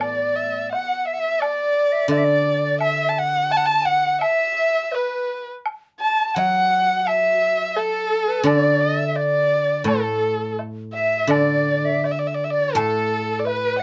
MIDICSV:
0, 0, Header, 1, 5, 480
1, 0, Start_track
1, 0, Tempo, 700117
1, 10, Time_signature, 2, 2, 24, 8
1, 2890, Tempo, 720288
1, 4330, Tempo, 695249
1, 6250, Tempo, 722022
1, 8650, Tempo, 699301
1, 9378, End_track
2, 0, Start_track
2, 0, Title_t, "Erhu"
2, 0, Program_c, 0, 110
2, 0, Note_on_c, 0, 74, 71
2, 246, Note_on_c, 0, 76, 70
2, 257, Note_off_c, 0, 74, 0
2, 491, Note_off_c, 0, 76, 0
2, 495, Note_on_c, 0, 78, 79
2, 685, Note_off_c, 0, 78, 0
2, 685, Note_on_c, 0, 78, 49
2, 726, Note_on_c, 0, 76, 78
2, 737, Note_off_c, 0, 78, 0
2, 966, Note_on_c, 0, 74, 87
2, 977, Note_off_c, 0, 76, 0
2, 1443, Note_off_c, 0, 74, 0
2, 1455, Note_on_c, 0, 74, 90
2, 1904, Note_off_c, 0, 74, 0
2, 1931, Note_on_c, 0, 76, 88
2, 2124, Note_on_c, 0, 81, 70
2, 2134, Note_off_c, 0, 76, 0
2, 2188, Note_on_c, 0, 78, 89
2, 2198, Note_off_c, 0, 81, 0
2, 2417, Note_on_c, 0, 81, 92
2, 2427, Note_off_c, 0, 78, 0
2, 2452, Note_on_c, 0, 78, 87
2, 2462, Note_off_c, 0, 81, 0
2, 2511, Note_on_c, 0, 81, 91
2, 2521, Note_off_c, 0, 78, 0
2, 2644, Note_on_c, 0, 78, 85
2, 2654, Note_off_c, 0, 81, 0
2, 2886, Note_off_c, 0, 78, 0
2, 2890, Note_on_c, 0, 76, 93
2, 3381, Note_on_c, 0, 71, 75
2, 3391, Note_off_c, 0, 76, 0
2, 3735, Note_off_c, 0, 71, 0
2, 4083, Note_on_c, 0, 81, 83
2, 4266, Note_off_c, 0, 81, 0
2, 4266, Note_on_c, 0, 81, 60
2, 4316, Note_on_c, 0, 78, 88
2, 4326, Note_off_c, 0, 81, 0
2, 4815, Note_on_c, 0, 76, 87
2, 4826, Note_off_c, 0, 78, 0
2, 5288, Note_on_c, 0, 69, 85
2, 5298, Note_off_c, 0, 76, 0
2, 5762, Note_on_c, 0, 74, 78
2, 5772, Note_off_c, 0, 69, 0
2, 6012, Note_on_c, 0, 76, 78
2, 6022, Note_off_c, 0, 74, 0
2, 6250, Note_on_c, 0, 74, 86
2, 6260, Note_off_c, 0, 76, 0
2, 6722, Note_off_c, 0, 74, 0
2, 6731, Note_on_c, 0, 69, 67
2, 7176, Note_off_c, 0, 69, 0
2, 7434, Note_on_c, 0, 76, 78
2, 7674, Note_on_c, 0, 74, 80
2, 7684, Note_off_c, 0, 76, 0
2, 8166, Note_off_c, 0, 74, 0
2, 8173, Note_on_c, 0, 74, 67
2, 8218, Note_on_c, 0, 76, 76
2, 8228, Note_off_c, 0, 74, 0
2, 8270, Note_on_c, 0, 74, 67
2, 8280, Note_off_c, 0, 76, 0
2, 8321, Note_on_c, 0, 76, 65
2, 8331, Note_off_c, 0, 74, 0
2, 8376, Note_on_c, 0, 74, 69
2, 8386, Note_off_c, 0, 76, 0
2, 8437, Note_on_c, 0, 76, 69
2, 8447, Note_off_c, 0, 74, 0
2, 8479, Note_on_c, 0, 74, 85
2, 8488, Note_off_c, 0, 76, 0
2, 8632, Note_on_c, 0, 69, 84
2, 8642, Note_off_c, 0, 74, 0
2, 9085, Note_on_c, 0, 74, 58
2, 9095, Note_off_c, 0, 69, 0
2, 9123, Note_on_c, 0, 71, 90
2, 9133, Note_off_c, 0, 74, 0
2, 9350, Note_off_c, 0, 71, 0
2, 9354, Note_on_c, 0, 78, 94
2, 9378, Note_off_c, 0, 78, 0
2, 9378, End_track
3, 0, Start_track
3, 0, Title_t, "Dizi"
3, 0, Program_c, 1, 73
3, 2, Note_on_c, 1, 74, 62
3, 494, Note_off_c, 1, 74, 0
3, 497, Note_on_c, 1, 78, 60
3, 736, Note_on_c, 1, 76, 55
3, 746, Note_off_c, 1, 78, 0
3, 780, Note_on_c, 1, 78, 48
3, 790, Note_off_c, 1, 76, 0
3, 820, Note_on_c, 1, 76, 58
3, 831, Note_off_c, 1, 78, 0
3, 957, Note_on_c, 1, 74, 67
3, 967, Note_off_c, 1, 76, 0
3, 1318, Note_on_c, 1, 76, 72
3, 1328, Note_off_c, 1, 74, 0
3, 1436, Note_off_c, 1, 76, 0
3, 1440, Note_on_c, 1, 74, 65
3, 1492, Note_on_c, 1, 76, 61
3, 1502, Note_off_c, 1, 74, 0
3, 1539, Note_on_c, 1, 74, 72
3, 1549, Note_off_c, 1, 76, 0
3, 1806, Note_off_c, 1, 74, 0
3, 1809, Note_on_c, 1, 74, 74
3, 1911, Note_off_c, 1, 74, 0
3, 1915, Note_on_c, 1, 76, 78
3, 2200, Note_off_c, 1, 76, 0
3, 2402, Note_on_c, 1, 81, 92
3, 2652, Note_on_c, 1, 78, 75
3, 2663, Note_off_c, 1, 81, 0
3, 2893, Note_on_c, 1, 76, 79
3, 2903, Note_off_c, 1, 78, 0
3, 3357, Note_on_c, 1, 71, 61
3, 3367, Note_off_c, 1, 76, 0
3, 3724, Note_off_c, 1, 71, 0
3, 4094, Note_on_c, 1, 81, 69
3, 4336, Note_on_c, 1, 78, 71
3, 4346, Note_off_c, 1, 81, 0
3, 4811, Note_on_c, 1, 76, 77
3, 4822, Note_off_c, 1, 78, 0
3, 5287, Note_on_c, 1, 69, 66
3, 5297, Note_off_c, 1, 76, 0
3, 5645, Note_on_c, 1, 71, 62
3, 5655, Note_off_c, 1, 69, 0
3, 5763, Note_off_c, 1, 71, 0
3, 5767, Note_on_c, 1, 74, 77
3, 6175, Note_off_c, 1, 74, 0
3, 6193, Note_on_c, 1, 76, 54
3, 6251, Note_on_c, 1, 74, 66
3, 6261, Note_off_c, 1, 76, 0
3, 6712, Note_on_c, 1, 69, 58
3, 6722, Note_off_c, 1, 74, 0
3, 7194, Note_off_c, 1, 69, 0
3, 7429, Note_on_c, 1, 76, 65
3, 7680, Note_on_c, 1, 74, 69
3, 7690, Note_off_c, 1, 76, 0
3, 8040, Note_on_c, 1, 76, 65
3, 8050, Note_off_c, 1, 74, 0
3, 8166, Note_off_c, 1, 76, 0
3, 8483, Note_on_c, 1, 74, 64
3, 8639, Note_on_c, 1, 69, 77
3, 8649, Note_off_c, 1, 74, 0
3, 9008, Note_off_c, 1, 69, 0
3, 9019, Note_on_c, 1, 69, 69
3, 9118, Note_on_c, 1, 71, 78
3, 9129, Note_off_c, 1, 69, 0
3, 9370, Note_off_c, 1, 71, 0
3, 9378, End_track
4, 0, Start_track
4, 0, Title_t, "Guzheng"
4, 0, Program_c, 2, 107
4, 0, Note_on_c, 2, 45, 55
4, 0, Note_on_c, 2, 52, 39
4, 0, Note_on_c, 2, 57, 38
4, 0, Note_on_c, 2, 59, 34
4, 0, Note_on_c, 2, 64, 37
4, 129, Note_off_c, 2, 52, 0
4, 252, Note_off_c, 2, 57, 0
4, 373, Note_off_c, 2, 59, 0
4, 488, Note_off_c, 2, 45, 0
4, 494, Note_off_c, 2, 64, 0
4, 1426, Note_on_c, 2, 50, 57
4, 2880, Note_off_c, 2, 50, 0
4, 4320, Note_on_c, 2, 54, 52
4, 5751, Note_on_c, 2, 50, 62
4, 5761, Note_off_c, 2, 54, 0
4, 6706, Note_on_c, 2, 45, 56
4, 6715, Note_off_c, 2, 50, 0
4, 7658, Note_on_c, 2, 50, 58
4, 8161, Note_off_c, 2, 45, 0
4, 8639, Note_off_c, 2, 50, 0
4, 8639, Note_on_c, 2, 45, 60
4, 9378, Note_off_c, 2, 45, 0
4, 9378, End_track
5, 0, Start_track
5, 0, Title_t, "Drums"
5, 5, Note_on_c, 9, 76, 51
5, 73, Note_off_c, 9, 76, 0
5, 498, Note_on_c, 9, 77, 38
5, 566, Note_off_c, 9, 77, 0
5, 973, Note_on_c, 9, 76, 59
5, 1042, Note_off_c, 9, 76, 0
5, 1448, Note_on_c, 9, 77, 38
5, 1516, Note_off_c, 9, 77, 0
5, 1923, Note_on_c, 9, 76, 49
5, 1992, Note_off_c, 9, 76, 0
5, 2406, Note_on_c, 9, 77, 36
5, 2475, Note_off_c, 9, 77, 0
5, 2889, Note_on_c, 9, 76, 53
5, 2955, Note_off_c, 9, 76, 0
5, 3360, Note_on_c, 9, 77, 35
5, 3427, Note_off_c, 9, 77, 0
5, 3850, Note_on_c, 9, 76, 57
5, 3916, Note_off_c, 9, 76, 0
5, 4331, Note_on_c, 9, 77, 37
5, 4400, Note_off_c, 9, 77, 0
5, 4808, Note_on_c, 9, 76, 54
5, 4877, Note_off_c, 9, 76, 0
5, 5289, Note_on_c, 9, 77, 38
5, 5358, Note_off_c, 9, 77, 0
5, 5772, Note_on_c, 9, 76, 55
5, 5841, Note_off_c, 9, 76, 0
5, 6250, Note_on_c, 9, 77, 37
5, 6317, Note_off_c, 9, 77, 0
5, 6727, Note_on_c, 9, 76, 49
5, 6794, Note_off_c, 9, 76, 0
5, 7202, Note_on_c, 9, 77, 38
5, 7269, Note_off_c, 9, 77, 0
5, 7679, Note_on_c, 9, 76, 55
5, 7746, Note_off_c, 9, 76, 0
5, 8167, Note_on_c, 9, 77, 38
5, 8234, Note_off_c, 9, 77, 0
5, 8647, Note_on_c, 9, 76, 58
5, 8716, Note_off_c, 9, 76, 0
5, 9129, Note_on_c, 9, 77, 41
5, 9198, Note_off_c, 9, 77, 0
5, 9378, End_track
0, 0, End_of_file